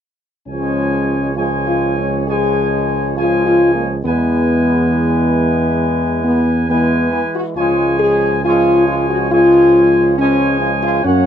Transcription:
0.48 4.01 C#2 medium
0.48 1.33 F3 medium
0.48 1.33 G#3 medium
0.48 1.33 C#4 medium
0.48 1.33 C#5 medium
0.48 1.33 G#5 soft
1.36 2.24 F3 soft
1.36 2.24 G#3 medium
1.36 1.50 F4 medium
1.36 2.24 C#5 medium
1.36 2.24 G#5 soft
1.66 1.95 F4 medium
1.97 2.26 C#4 medium
2.27 3.13 F3 medium
2.27 3.13 G#3 medium
2.27 3.13 G#4 medium
2.27 3.13 C#5 soft
2.27 3.13 G#5 medium
3.17 4.01 F3 medium
3.17 4.02 G#3 medium
3.17 3.44 F4 medium
3.17 4.01 C#5 medium
3.17 4.01 G#5 medium
3.46 3.74 F4 medium
3.75 3.88 A#3 medium
4.04 7.24 E2 medium
4.04 6.52 E3 medium
4.04 6.52 G#3 medium
4.04 6.20 B3 medium
4.04 6.64 B4 medium
4.04 6.64 G#5 medium
6.24 6.65 B3 medium
6.68 7.52 E3 medium
6.68 7.52 G#3 medium
6.68 7.10 B3 medium
6.68 7.39 B4 medium
6.68 7.39 G#5 medium
7.13 7.22 B3 medium
7.35 7.45 F#4 medium
7.56 11.01 C#2 medium
7.56 8.40 F3 medium
7.56 8.40 G#3 medium
7.56 7.97 F4 medium
7.56 8.40 C#5 medium
7.56 8.40 G#5 medium
8.00 8.40 G#4 medium
8.44 9.27 F3 medium
8.44 9.27 G#3 medium
8.44 8.85 F4 medium
8.44 9.27 C#5 medium
8.44 9.27 G#5 medium
8.88 9.08 F4 medium
9.09 9.30 F#4 medium
9.30 10.14 F3 medium
9.30 10.14 G#3 medium
9.30 10.14 F4 medium
9.30 10.15 C#5 medium
9.30 10.15 G#5 medium
10.18 11.01 F3 medium
10.18 11.01 G#3 medium
10.18 10.58 C#4 medium
10.18 11.01 C#5 medium
10.18 11.01 G#5 medium
10.61 10.71 F4 medium
10.83 11.03 F4 medium
11.04 11.26 F#2 medium
11.04 11.26 F#3 medium
11.04 11.26 A#3 medium
11.04 11.26 C#4 medium
11.04 11.26 C#5 medium
11.04 11.26 F#5 medium

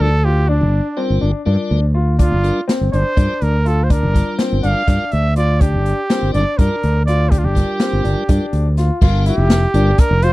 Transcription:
0.00 0.63 D2 medium
0.00 0.12 D4 medium
0.00 0.26 A4 medium
0.24 0.43 F4 medium
0.24 0.51 G4 medium
0.48 0.85 D4 medium
0.48 1.04 D4 medium
0.61 0.79 G1 medium
0.97 1.31 G3 medium
0.97 1.16 C4 medium
0.97 1.31 D4 medium
0.97 1.31 F4 medium
0.97 1.32 A#4 medium
1.10 1.19 G1 medium
1.21 1.31 G1 medium
1.21 1.40 D4 medium
1.46 1.56 G2 medium
1.46 1.80 G3 medium
1.46 1.80 D4 medium
1.46 1.83 D4 medium
1.46 1.80 F4 medium
1.46 1.80 A#4 medium
1.71 2.33 D2 medium
1.94 2.13 F4 medium
2.19 2.56 D4 medium
2.19 2.65 F4 medium
2.19 kick medium
2.19 closed hi-hat medium
2.32 2.50 G1 medium
2.44 2.61 G3 medium
2.44 2.61 D4 medium
2.44 2.61 F4 medium
2.44 2.61 A#4 medium
2.44 closed hi-hat soft
2.68 2.86 C4 medium
2.68 snare loud
2.68 closed hi-hat medium
2.81 2.90 G1 medium
2.92 3.02 G1 medium
2.92 3.11 D4 medium
2.92 3.45 C5 medium
2.92 closed hi-hat soft
3.16 3.26 G2 medium
3.16 3.34 G3 medium
3.16 3.54 D4 medium
3.16 3.34 D4 soft
3.16 3.34 F4 soft
3.16 3.34 A#4 medium
3.16 kick medium
3.16 closed hi-hat medium
3.42 4.05 D2 medium
3.42 3.69 A#4 medium
3.42 closed hi-hat soft
3.65 3.84 F4 medium
3.65 3.85 A4 medium
3.65 closed hi-hat medium
3.84 3.93 C5 medium
3.90 4.27 D4 medium
3.90 4.40 A#4 medium
3.90 kick loud
3.90 closed hi-hat medium
4.03 4.21 G1 medium
4.14 4.83 G3 medium
4.14 4.83 D4 medium
4.14 4.83 F4 medium
4.14 4.83 A#4 medium
4.14 kick medium
4.14 closed hi-hat medium
4.38 4.57 C4 medium
4.38 snare medium
4.38 closed hi-hat medium
4.52 4.61 G1 medium
4.63 4.73 G1 medium
4.63 4.82 D4 medium
4.63 5.13 F5 medium
4.63 closed hi-hat medium
4.87 4.97 G2 medium
4.87 5.05 G3 medium
4.87 5.24 D4 medium
4.87 5.05 D4 medium
4.87 5.05 F4 medium
4.87 5.05 A#4 medium
4.87 kick medium
4.87 snare soft
4.87 closed hi-hat medium
5.12 5.75 D2 medium
5.12 5.35 E5 medium
5.12 closed hi-hat medium
5.36 5.55 F4 medium
5.36 5.63 D5 medium
5.36 closed hi-hat medium
5.61 5.98 D4 medium
5.61 6.33 G4 medium
5.61 kick medium
5.61 closed hi-hat medium
5.74 5.92 G1 medium
5.86 closed hi-hat medium
6.10 6.44 G3 medium
6.10 6.28 C4 medium
6.10 6.44 D4 medium
6.10 6.44 F4 soft
6.10 6.44 A#4 medium
6.10 snare loud
6.10 closed hi-hat medium
6.23 6.31 G1 medium
6.33 6.44 G1 medium
6.33 6.53 D4 medium
6.33 6.59 D5 medium
6.33 closed hi-hat medium
6.58 6.68 G2 medium
6.58 6.76 G3 medium
6.58 6.76 D4 medium
6.58 6.96 D4 medium
6.58 6.76 F4 medium
6.58 7.05 A#4 medium
6.58 6.76 A#4 medium
6.58 kick medium
6.58 closed hi-hat medium
6.83 7.45 D2 medium
6.83 closed hi-hat soft
7.06 7.26 F4 medium
7.06 7.33 D5 medium
7.06 closed hi-hat medium
7.31 7.68 D4 medium
7.31 7.40 G4 medium
7.31 kick loud
7.31 closed hi-hat medium
7.38 7.46 F4 medium
7.44 7.62 G1 medium
7.44 8.77 G4 medium
7.55 8.24 G3 medium
7.55 8.24 D4 medium
7.55 8.24 F4 medium
7.55 8.24 A#4 medium
7.55 kick medium
7.55 snare soft
7.55 closed hi-hat medium
7.80 7.99 C4 medium
7.80 snare medium
7.80 closed hi-hat medium
7.93 8.02 G1 medium
8.04 8.14 G1 medium
8.04 8.23 D4 medium
8.04 closed hi-hat medium
8.29 8.38 G2 medium
8.29 8.46 G3 medium
8.29 8.65 D4 medium
8.29 8.46 D4 medium
8.29 8.46 F4 medium
8.29 8.46 A#4 medium
8.29 kick medium
8.29 closed hi-hat medium
8.53 8.89 D2 medium
8.53 closed hi-hat medium
8.77 8.96 F4 medium
8.77 snare soft
8.77 closed hi-hat medium
9.01 9.29 G1 medium
9.01 9.36 G3 medium
9.01 9.36 D4 medium
9.01 9.35 F4 medium
9.01 9.20 F4 medium
9.01 9.36 A#4 medium
9.01 kick loud
9.01 crash medium
9.26 9.63 E4 medium
9.26 10.01 G4 medium
9.26 closed hi-hat medium
9.38 9.65 F1 medium
9.50 snare loud
9.50 closed hi-hat medium
9.74 9.92 G1 medium
9.74 9.91 G3 medium
9.74 9.91 D4 medium
9.74 10.11 D4 medium
9.74 9.91 F4 medium
9.74 9.91 A#4 medium
9.74 closed hi-hat medium
9.98 10.25 A#4 medium
9.98 kick loud
9.98 snare soft
9.98 closed hi-hat medium
10.11 10.33 F1 medium
10.22 10.33 F4 medium
10.22 10.33 C5 medium
10.22 closed hi-hat medium

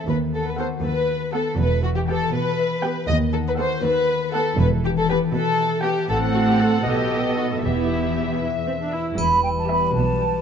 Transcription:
0.00 0.82 A4 soft
0.06 0.53 D#2 soft
0.06 0.67 D#2 soft
0.06 1.60 D#3 soft
0.06 0.17 B4 soft
0.33 3.32 B3 soft
0.33 0.46 A4 soft
0.47 0.59 B4 soft
0.58 0.77 B3 soft
0.58 1.60 F#4 soft
0.58 0.77 A4 soft
0.58 0.67 C5 medium
0.58 0.76 F#5 soft
0.82 1.42 D#2 soft
0.82 1.32 A4 soft
0.82 1.32 B4 medium
1.08 2.32 B4 soft
1.33 1.52 B3 soft
1.33 1.60 A4 soft
1.33 1.52 A4 soft
1.33 1.59 A4 medium
1.33 1.52 F#5 soft
1.57 2.04 E1 medium
1.57 2.18 E2 medium
1.57 3.10 E3 soft
1.57 1.83 B4 medium
1.83 3.10 E4 soft
1.83 1.89 F#4 soft
1.96 2.01 G4 soft
2.08 2.27 B3 soft
2.08 3.10 G4 soft
2.08 2.27 G4 soft
2.08 2.34 A4 medium
2.08 2.27 G5 soft
2.32 2.93 B2 soft
2.32 2.83 B4 soft
2.32 3.08 B4 medium
2.58 3.10 E5 soft
2.83 3.02 B3 soft
2.83 3.02 G4 medium
2.83 4.08 B4 soft
2.83 3.02 G5 soft
3.08 3.68 D#2 medium
3.08 3.55 D#2 medium
3.08 4.61 D#3 soft
3.08 3.16 D#5 medium
3.33 6.12 B3 soft
3.33 3.38 A4 medium
3.48 3.52 B4 medium
3.58 3.77 B3 medium
3.58 4.61 F#4 soft
3.58 3.77 A4 soft
3.58 3.84 C5 medium
3.58 3.77 F#5 soft
3.83 4.43 D#2 medium
3.83 4.33 A4 soft
3.83 4.33 B4 medium
4.09 5.33 B4 soft
4.34 4.53 B3 soft
4.34 4.61 A4 soft
4.34 4.59 A4 medium
4.34 4.53 A4 soft
4.34 4.53 F#5 medium
4.58 5.06 E1 medium
4.58 5.19 E2 medium
4.58 6.12 E3 medium
4.58 4.68 B4 medium
4.84 6.12 E4 soft
4.84 4.90 G4 medium
4.98 5.09 A4 medium
5.09 5.29 B3 soft
5.09 6.12 G4 soft
5.09 5.28 G4 soft
5.09 5.17 B4 medium
5.09 5.28 G5 soft
5.34 5.94 B2 medium
5.34 5.84 A4 medium
5.34 5.84 B4 soft
5.60 6.12 E5 soft
5.84 6.03 B3 soft
5.84 6.09 G4 medium
5.84 6.04 G4 soft
5.84 6.12 B4 soft
5.84 6.03 G5 medium
6.09 6.57 A1 soft
6.09 6.82 A2 soft
6.09 6.88 A2 soft
6.09 6.82 C4 soft
6.09 6.17 A4 medium
6.09 6.82 A4 soft
6.09 6.82 F#5 soft
6.35 6.88 C4 soft
6.35 6.40 F#4 medium
6.47 6.60 G4 medium
6.60 7.65 F#4 soft
6.60 7.36 A4 soft
6.60 6.86 A4 medium
6.85 7.34 B1 soft
6.85 7.65 B2 soft
6.85 7.62 B2 soft
6.85 7.63 B3 soft
6.85 7.37 G4 medium
6.85 7.62 A4 soft
6.85 7.63 D#5 soft
7.11 10.42 B3 soft
7.37 7.65 D#4 soft
7.37 7.46 F#4 soft
7.37 7.65 A4 soft
7.62 8.12 E1 soft
7.62 8.98 E2 soft
7.62 9.18 E3 soft
7.62 8.34 B3 soft
7.62 8.39 E4 soft
7.62 8.36 G4 soft
7.62 8.95 E5 soft
7.90 9.44 E4 soft
8.16 9.69 G4 soft
8.41 8.49 E4 soft
8.41 8.92 B4 soft
8.66 8.71 C4 soft
8.66 10.42 E5 soft
8.81 8.93 D4 soft
8.92 9.18 E4 soft
8.92 9.95 B4 soft
9.17 9.79 E1 medium
9.17 9.79 E2 soft
9.17 10.42 E3 soft
9.17 10.42 G3 soft
9.17 10.42 B4 soft
9.17 9.41 B5 medium
9.17 triangle soft
9.43 10.42 E4 soft
9.43 9.49 G5 medium
9.58 9.70 A5 soft
9.68 9.88 B3 soft
9.68 9.87 G4 soft
9.68 10.19 G4 soft
9.68 9.88 E5 soft
9.68 9.95 B5 medium
9.95 10.42 B1 soft
9.95 10.42 B2 medium
9.95 10.42 B4 soft
9.95 10.42 A5 medium
10.20 10.42 G4 soft

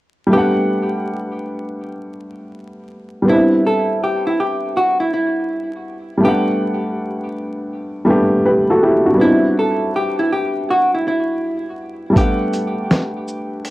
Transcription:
0.27 3.21 G3 medium
0.27 3.22 A3 soft
0.32 3.23 B3 medium
0.32 3.25 D4 soft
0.32 1.25 G4 loud
0.37 3.26 F#5 medium
3.22 6.16 G3 medium
3.22 6.18 B3 medium
3.27 6.19 C4 medium
3.27 6.21 D4 soft
3.27 3.62 E4 medium
3.33 6.22 E4 medium
3.67 3.99 A4 medium
4.03 4.23 G4 medium
4.27 4.38 E4 medium
4.40 4.72 G4 medium
4.77 4.97 F#4 medium
5.00 5.12 E4 medium
5.14 5.70 E4 medium
6.17 8.02 G3 medium
6.17 8.03 A3 medium
6.23 8.04 B3 medium
6.23 8.06 D4 medium
6.23 7.17 G4 loud
6.28 8.07 F#5 medium
8.05 9.12 G3 medium
8.05 9.18 A3 medium
8.05 9.14 B3 medium
8.05 8.46 D4 medium
8.10 8.45 G4 medium
8.46 8.68 G4 soft
8.46 8.68 B4 medium
8.70 8.83 F#4 medium
8.70 8.82 A4 medium
8.83 9.05 E4 medium
8.83 9.05 G4 medium
9.06 9.20 D4 soft
9.06 9.41 F#4 medium
9.13 12.08 G3 soft
9.13 12.10 B3 medium
9.19 12.11 C4 soft
9.19 12.13 D4 medium
9.19 9.54 E4 medium
9.24 9.30 D#4 soft
9.31 12.17 E4 medium
9.59 9.91 A4 medium
9.96 10.16 G4 medium
10.19 10.30 E4 medium
10.32 10.65 G4 medium
10.70 10.90 F#4 medium
10.94 11.05 E4 medium
11.08 11.63 E4 medium
12.10 13.70 G3 medium
12.10 13.70 A3 medium
12.15 13.70 B3 medium
12.15 13.70 D4 soft
12.15 13.10 G4 loud
12.15 kick loud
12.15 closed hi-hat medium
12.21 13.70 F#5 medium
12.54 closed hi-hat soft
12.54 shaker medium
12.91 snare medium
12.91 closed hi-hat soft
13.28 shaker soft
13.65 closed hi-hat medium

